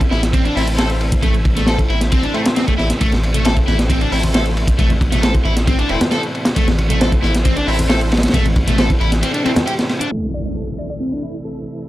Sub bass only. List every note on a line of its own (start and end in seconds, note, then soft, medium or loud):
0.12 0.49 A1 loud
0.56 1.16 A1 medium
1.22 1.82 A1 loud
1.89 2.27 A1 loud
2.78 2.92 A1 medium
3.01 3.61 A1 loud
3.67 4.05 A1 loud
4.12 4.72 A1 medium
4.79 5.38 A1 loud
5.45 5.83 A1 loud
5.90 5.97 E1 loud
6.56 7.16 A1 loud
7.23 7.60 A1 loud
7.67 8.27 A1 medium
8.34 8.94 A1 loud
9.01 9.23 A1 loud